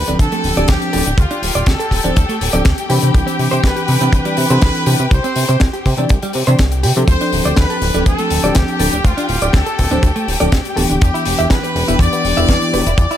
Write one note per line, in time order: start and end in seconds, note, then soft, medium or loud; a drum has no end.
0.00 7.07 G4 medium
0.00 0.16 B4 loud
0.00 7.07 G5 medium
0.07 0.16 D1 medium
0.07 0.54 F3 medium
0.07 0.54 C4 medium
0.07 0.54 D4 medium
0.07 0.14 D4 medium
0.07 0.54 A4 medium
0.07 closed hi-hat medium
0.19 0.28 D2 medium
0.19 0.69 A4 loud
0.19 kick loud
0.19 closed hi-hat loud
0.32 0.41 A3 medium
0.32 closed hi-hat medium
0.44 0.53 D1 medium
0.44 open hi-hat loud
0.56 0.65 D1 loud
0.56 0.90 F3 medium
0.56 0.90 C4 medium
0.56 0.90 D4 medium
0.56 0.90 G4 medium
0.56 0.66 D5 loud
0.56 closed hi-hat medium
0.68 0.77 D2 medium
0.68 1.18 G4 loud
0.68 kick loud
0.68 snare loud
0.68 closed hi-hat loud
0.82 closed hi-hat medium
0.93 1.02 D1 loud
0.93 1.02 F3 medium
0.93 1.02 C4 medium
0.93 1.03 D4 medium
0.93 1.00 A4 medium
0.93 1.03 A4 medium
0.93 open hi-hat loud
1.06 1.14 D1 medium
1.06 1.10 D4 medium
1.06 closed hi-hat medium
1.18 1.26 D2 loud
1.18 1.67 F4 medium
1.18 kick loud
1.18 closed hi-hat medium
1.31 1.40 D4 medium
1.31 closed hi-hat medium
1.43 1.51 D1 medium
1.43 open hi-hat loud
1.55 1.63 D1 medium
1.55 1.64 D5 loud
1.55 closed hi-hat medium
1.66 1.76 D2 loud
1.66 2.66 A4 medium
1.66 kick loud
1.66 snare loud
1.66 closed hi-hat loud
1.80 1.86 A4 medium
1.80 closed hi-hat medium
1.91 2.00 D1 loud
1.91 kick medium
1.91 open hi-hat loud
2.04 2.12 D1 medium
2.04 2.18 F3 medium
2.04 2.18 C4 medium
2.04 2.10 D4 medium
2.04 2.18 D4 medium
2.04 2.18 C5 medium
2.04 closed hi-hat medium
2.16 2.25 D2 loud
2.16 kick loud
2.16 closed hi-hat loud
2.29 2.38 A3 medium
2.29 closed hi-hat medium
2.41 2.49 D1 medium
2.41 open hi-hat loud
2.53 2.62 D1 loud
2.53 2.62 F3 medium
2.53 2.62 C4 medium
2.53 2.62 D4 medium
2.53 2.63 A4 loud
2.53 2.62 D5 loud
2.53 closed hi-hat medium
2.65 2.74 D2 medium
2.65 kick loud
2.65 snare loud
2.65 closed hi-hat loud
2.78 closed hi-hat medium
2.89 2.99 C3 medium
2.89 3.98 E3 medium
2.89 3.98 C4 medium
2.89 3.98 D4 medium
2.89 2.96 G4 medium
2.89 3.99 B5 medium
2.89 open hi-hat loud
3.02 3.11 C3 medium
3.02 3.06 C4 medium
3.02 closed hi-hat medium
3.14 3.23 C2 loud
3.14 3.60 G4 medium
3.14 kick loud
3.14 closed hi-hat medium
3.27 3.36 C4 medium
3.27 closed hi-hat medium
3.39 3.48 C3 medium
3.39 open hi-hat loud
3.51 3.60 C3 medium
3.51 3.60 C5 loud
3.51 closed hi-hat medium
3.64 3.72 C2 loud
3.64 4.13 B4 loud
3.64 kick loud
3.64 snare loud
3.64 closed hi-hat loud
3.76 3.82 G4 medium
3.76 closed hi-hat medium
3.88 3.97 C3 loud
3.88 open hi-hat loud
4.01 4.09 C3 medium
4.01 4.47 E3 medium
4.01 4.07 C4 medium
4.01 4.47 C4 medium
4.01 4.48 D4 medium
4.01 4.48 B5 medium
4.01 closed hi-hat medium
4.13 4.21 C2 loud
4.13 5.08 B4 loud
4.13 kick loud
4.13 closed hi-hat medium
4.25 4.34 G3 medium
4.25 closed hi-hat medium
4.37 4.46 C3 medium
4.37 open hi-hat loud
4.50 4.58 C3 loud
4.50 4.84 E3 medium
4.50 4.84 C4 medium
4.50 4.84 D4 medium
4.50 4.84 A4 medium
4.50 4.59 C5 loud
4.50 closed hi-hat soft
4.62 4.71 C2 medium
4.62 kick loud
4.62 snare loud
4.62 closed hi-hat medium
4.75 closed hi-hat medium
4.86 4.95 C3 loud
4.86 4.96 E3 medium
4.86 4.96 C4 medium
4.86 4.96 D4 medium
4.86 4.93 G4 medium
4.86 4.96 B4 medium
4.86 open hi-hat loud
4.99 5.07 C3 medium
4.99 5.03 C4 medium
4.99 closed hi-hat medium
5.11 5.20 C2 loud
5.11 5.61 C5 loud
5.11 kick loud
5.11 closed hi-hat medium
5.24 5.33 C4 medium
5.24 closed hi-hat medium
5.36 5.45 C3 medium
5.36 open hi-hat loud
5.49 5.57 C3 medium
5.49 5.58 C5 loud
5.49 closed hi-hat medium
5.60 5.70 C2 loud
5.60 kick loud
5.60 snare loud
5.60 closed hi-hat loud
5.73 5.79 G4 medium
5.73 closed hi-hat soft
5.86 5.94 C3 loud
5.86 kick medium
5.86 open hi-hat loud
5.97 6.06 C3 medium
5.97 6.11 E3 medium
5.97 6.11 C4 medium
5.97 6.04 C4 medium
5.97 6.11 D4 medium
5.97 6.12 D5 medium
5.97 closed hi-hat medium
6.09 6.19 C2 medium
6.09 kick loud
6.09 closed hi-hat medium
6.22 6.31 G3 medium
6.22 closed hi-hat medium
6.33 6.43 C3 medium
6.33 open hi-hat loud
6.47 6.55 C3 loud
6.47 6.61 E3 medium
6.47 6.61 C4 medium
6.47 6.61 D4 medium
6.47 6.56 C5 loud
6.47 6.61 D5 medium
6.47 closed hi-hat medium
6.59 6.86 C2 medium
6.59 kick loud
6.59 snare loud
6.59 closed hi-hat loud
6.72 closed hi-hat medium
6.83 6.92 C3 loud
6.83 6.90 G4 medium
6.83 open hi-hat loud
6.96 7.04 C3 loud
6.96 7.91 F3 medium
6.96 7.00 C4 medium
6.96 7.92 C4 medium
6.96 7.92 D4 medium
6.96 7.92 A4 medium
6.96 closed hi-hat soft
7.08 7.17 D2 loud
7.08 13.17 G4 medium
7.08 7.54 C5 loud
7.08 13.17 G5 medium
7.08 kick loud
7.08 closed hi-hat medium
7.21 7.30 D4 medium
7.21 closed hi-hat medium
7.33 7.41 D1 medium
7.33 open hi-hat loud
7.45 7.53 D1 medium
7.45 7.54 D5 loud
7.45 closed hi-hat medium
7.57 7.66 D2 loud
7.57 8.06 B4 loud
7.57 kick loud
7.57 snare loud
7.57 closed hi-hat medium
7.70 7.76 A4 medium
7.70 closed hi-hat medium
7.82 7.90 D1 loud
7.82 open hi-hat loud
7.94 8.02 D1 medium
7.94 8.41 F3 medium
7.94 8.41 C4 medium
7.94 8.00 D4 medium
7.94 8.41 D4 medium
7.94 8.41 A4 medium
7.94 closed hi-hat medium
8.06 8.15 D2 loud
8.06 8.52 A4 loud
8.06 kick loud
8.06 closed hi-hat loud
8.18 8.28 A3 medium
8.18 closed hi-hat medium
8.30 8.39 D1 medium
8.30 open hi-hat loud
8.44 8.52 D1 medium
8.44 8.77 F3 medium
8.44 8.77 C4 medium
8.44 8.77 D4 medium
8.44 8.78 G4 medium
8.44 8.53 D5 loud
8.44 closed hi-hat soft
8.55 8.64 D2 medium
8.55 9.05 G4 medium
8.55 kick loud
8.55 snare loud
8.55 closed hi-hat loud
8.68 closed hi-hat soft
8.79 8.89 D1 loud
8.79 8.89 F3 medium
8.79 8.89 C4 medium
8.79 8.89 D4 medium
8.79 8.87 A4 medium
8.79 8.89 A4 medium
8.79 open hi-hat loud
8.93 9.01 D1 medium
8.93 8.97 D4 medium
8.93 closed hi-hat medium
9.05 9.13 D2 loud
9.05 9.54 F4 loud
9.05 kick loud
9.05 closed hi-hat loud
9.17 9.26 D4 medium
9.17 closed hi-hat medium
9.29 9.38 D1 medium
9.29 open hi-hat medium
9.42 9.50 D1 medium
9.42 9.51 D5 loud
9.42 closed hi-hat medium
9.53 9.63 D2 loud
9.53 10.52 A4 medium
9.53 kick loud
9.53 snare loud
9.53 closed hi-hat medium
9.66 9.72 A4 medium
9.66 closed hi-hat medium
9.79 9.88 D1 loud
9.79 kick medium
9.79 open hi-hat loud
9.91 9.99 D1 medium
9.91 10.05 F3 medium
9.91 10.05 C4 medium
9.91 9.97 D4 medium
9.91 10.05 D4 medium
9.91 10.05 C5 medium
9.91 closed hi-hat soft
10.03 10.12 D2 loud
10.03 kick loud
10.03 closed hi-hat loud
10.16 10.25 A3 medium
10.16 closed hi-hat medium
10.28 10.36 D1 medium
10.28 open hi-hat loud
10.40 10.49 D1 loud
10.40 10.49 F3 medium
10.40 10.49 C4 medium
10.40 10.49 D4 medium
10.40 10.49 A4 loud
10.40 10.49 D5 loud
10.40 closed hi-hat medium
10.52 10.61 D2 medium
10.52 kick loud
10.52 snare loud
10.52 closed hi-hat loud
10.65 closed hi-hat medium
10.76 10.86 D1 loud
10.76 11.84 E3 medium
10.76 11.85 B3 medium
10.76 11.85 D4 medium
10.76 11.85 G4 medium
10.76 10.83 A4 medium
10.76 open hi-hat loud
10.90 10.98 D1 medium
10.90 10.93 D4 medium
10.90 closed hi-hat medium
11.01 11.10 E2 loud
11.01 11.47 G4 loud
11.01 kick loud
11.01 closed hi-hat loud
11.14 11.23 E4 medium
11.14 closed hi-hat medium
11.25 11.35 E1 medium
11.25 open hi-hat loud
11.39 11.47 E1 medium
11.39 11.48 E5 loud
11.39 closed hi-hat medium
11.50 11.59 E2 loud
11.50 12.00 B4 loud
11.50 kick loud
11.50 snare loud
11.50 closed hi-hat loud
11.64 11.69 B4 medium
11.64 closed hi-hat medium
11.75 11.84 E1 loud
11.75 open hi-hat loud
11.87 11.96 E1 medium
11.87 12.34 E3 medium
11.87 12.34 B3 medium
11.87 12.34 D4 medium
11.87 11.94 E4 medium
11.87 12.34 G4 medium
11.87 closed hi-hat medium
11.99 12.08 E2 loud
11.99 12.97 D5 loud
11.99 kick loud
11.99 closed hi-hat loud
12.13 12.22 B3 medium
12.13 closed hi-hat medium
12.25 12.33 E1 medium
12.25 open hi-hat loud
12.36 12.45 E1 loud
12.36 12.70 E3 medium
12.36 12.71 B3 medium
12.36 12.71 D4 medium
12.36 12.71 E4 loud
12.36 12.46 E5 loud
12.36 closed hi-hat medium
12.49 12.58 E2 medium
12.49 kick loud
12.49 snare loud
12.49 closed hi-hat loud
12.62 closed hi-hat soft
12.73 12.82 E1 medium
12.73 12.82 E3 medium
12.73 12.83 B3 medium
12.73 12.83 D4 medium
12.73 12.83 G4 medium
12.73 12.80 B4 medium
12.73 open hi-hat loud
12.87 12.94 E1 medium
12.87 12.90 E4 medium
12.87 closed hi-hat medium
12.98 13.07 E2 loud
12.98 13.17 D5 loud
12.98 kick loud
12.98 closed hi-hat loud
13.11 13.17 E4 medium
13.11 closed hi-hat medium